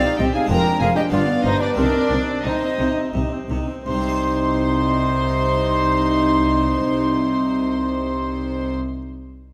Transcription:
Already playing: C3 C4 D#4 G4 D5 F5
0.04 D#4
0.18 C2 C3 C4 G4 D#5 G5
0.34 D#4 G#4 F5 G#5
0.45 G#3 D4 F4
0.49 F1 F2 F4 A#4 G5 A#5
0.65 D4
0.80 F1 F2 F4 G#4 F5 G#5
0.96 D4 G4 D#5 G5
1.09 G1 G2 B3 D4 F4 D5 F5
1.28 B3
1.44 G1 G2 D4 D#4 C5 D#5
1.60 B3 D4 B4 D5
1.74 C2 C3 C4 D4 D#4 A#4 D5
1.94 C4
2.10 C2 C3 D#4
2.28 C4
2.44 C2 C3 D#4 C5 D#5
2.62 C4
2.78 C2 C3 D#4
2.97 C4
3.14 C2 C3 D#4
3.32 C4
3.49 C2 C3 D#4
3.68 C4
3.86 C2 C3 D#4 C5 C6
3.93 G3
4.00 C4
4.07 D#4
4.14 C5

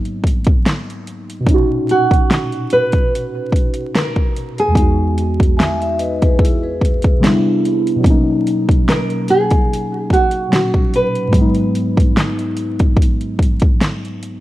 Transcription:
Already playing: G#2 F#3 A#3 B3 D#4
0.05 closed hi-hat
0.24 kick, closed hi-hat
0.44 kick, closed hi-hat
0.66 snare, closed hi-hat
0.90 closed hi-hat
1.07 closed hi-hat
1.30 closed hi-hat
1.40 A#2 B2
1.47 C#4 D#4, kick, closed hi-hat
1.54 F#4
1.89 F#4, closed hi-hat
2.11 kick, closed hi-hat
2.31 snare, closed hi-hat
2.52 closed hi-hat
2.70 B4, closed hi-hat
2.92 kick, closed hi-hat
3.15 closed hi-hat
3.52 kick, closed hi-hat
3.74 closed hi-hat
3.95 A#4, snare, closed hi-hat
4.16 kick
4.37 closed hi-hat
4.58 G#4, closed hi-hat
4.68 E2 G#3
4.75 B3 D#4, kick, closed hi-hat
4.82 F#4
5.18 closed hi-hat
5.40 kick, closed hi-hat
5.57 E5 G#5, snare
5.61 closed hi-hat
5.80 E5, closed hi-hat
5.99 B4 D#5, closed hi-hat
6.21 G#4 B4, kick, closed hi-hat
6.39 E4 G#4, kick
6.45 closed hi-hat
6.63 G#4 B4
6.81 kick, closed hi-hat
7.02 kick, closed hi-hat
7.19 C3 G3 B3
7.24 D4 E4, snare, closed hi-hat
7.65 closed hi-hat
7.87 closed hi-hat
7.96 B2 F#3
8.03 A#3 C#4, kick, closed hi-hat
8.10 D#4
8.47 closed hi-hat
8.69 kick, closed hi-hat
8.89 A#4, snare, closed hi-hat
9.10 closed hi-hat
9.28 G#4, closed hi-hat
9.51 kick, closed hi-hat
9.73 closed hi-hat
10.10 F#4, kick, closed hi-hat
10.31 closed hi-hat
10.48 A#2 B2 F#3
10.53 C#4 F#4, snare, closed hi-hat
10.74 kick
10.94 B4, closed hi-hat
11.15 closed hi-hat
11.28 G#2 F#3
11.33 G#3, kick, closed hi-hat
11.38 B3 D#4
11.55 closed hi-hat
11.75 closed hi-hat
11.97 kick, closed hi-hat
12.17 snare, closed hi-hat
12.39 closed hi-hat
12.57 closed hi-hat
12.79 kick, closed hi-hat
12.97 kick
13.02 closed hi-hat
13.21 closed hi-hat
13.39 kick, closed hi-hat
13.60 kick, closed hi-hat
13.81 snare, closed hi-hat
14.05 closed hi-hat
14.23 closed hi-hat

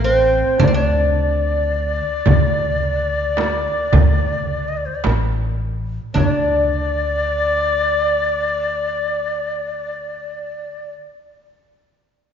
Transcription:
Already playing: A1
0.03 C4 C5
0.60 D2 D4 D5, frame drum, darbuka dum
0.68 C4
0.74 D4 D5
1.72 darbuka ka
2.26 D2, frame drum, darbuka dum
2.54 darbuka ka
2.83 darbuka ka
3.37 darbuka tek, frame drum
3.93 D2, frame drum, darbuka dum
4.21 darbuka ka
4.68 D#5
4.77 D5
4.86 C5
4.95 D5
5.04 A1, darbuka tek, frame drum
5.32 darbuka ka
6.14 D2 D4 C#5, frame drum, darbuka dum
6.28 D5

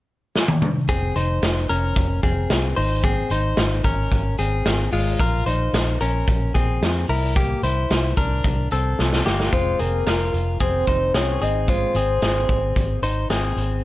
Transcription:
0.36 snare
0.48 high tom
0.62 mid tom
0.89 F1 C4 G#4, kick, closed hi-hat
1.16 F1 D#4 C5, closed hi-hat
1.42 F1, snare, closed hi-hat
1.69 F1 C#4 A#4, closed hi-hat
1.96 F1, kick, closed hi-hat
2.23 F1 C4 G#4, kick, closed hi-hat
2.50 C2, snare, closed hi-hat
2.76 G#1 D#4 C5, open hi-hat
3.03 C4 G#4, kick, closed hi-hat
3.30 G#1 D#4 C5, closed hi-hat
3.57 G#1, snare, closed hi-hat
3.84 G#1 C#4 A#4, kick, closed hi-hat
4.11 G#1, kick, closed hi-hat
4.38 G#1 C4 G#4, closed hi-hat
4.66 G#1, snare, closed hi-hat
4.92 G#1 G#3 F4, open hi-hat
5.19 A#1 F4 A#4, kick, closed hi-hat
5.46 A#1 D#4 C5, closed hi-hat
5.73 A#1, snare, closed hi-hat
6.01 A#1 C#4 A#4, closed hi-hat
6.28 A#1, kick, closed hi-hat
6.54 A#1 C4 G#4, kick, closed hi-hat
6.81 F2, snare, closed hi-hat
7.09 C2 E4 A#4, open hi-hat
7.36 A#3 G4, kick, closed hi-hat
7.63 C2 E4 C5, closed hi-hat
7.90 C2, snare, closed hi-hat
8.17 C2 D4 A#4, kick, closed hi-hat
8.44 C2, kick, closed hi-hat
8.71 C2 C4 A4, closed hi-hat
8.99 C2, snare
9.13 snare
9.26 G1 A#3 G4, snare
9.40 snare
9.52 F1 G#3 F4 C5, kick, closed hi-hat
9.79 F1 C4 G#4 A#4, closed hi-hat
10.07 F1 F4 A#4, snare, closed hi-hat
10.33 F1, closed hi-hat
10.60 F1 C4 G#4 C5, kick, closed hi-hat
10.87 F1 D#4 C5, kick, closed hi-hat
11.14 C2 C4 G#4 C#5, snare, closed hi-hat
11.41 G#1 C4 G#4 D#5, closed hi-hat
11.68 G#3 F4 C5, kick, closed hi-hat
11.95 G#1 C4 G#4, closed hi-hat
12.22 G#1 C4 G#4, snare, closed hi-hat
12.49 G#1, kick, closed hi-hat
12.76 G#1, kick, closed hi-hat
13.02 G#1 D#4 C5, closed hi-hat
13.30 G#1 C4 G#4, snare, closed hi-hat
13.56 G#1, closed hi-hat

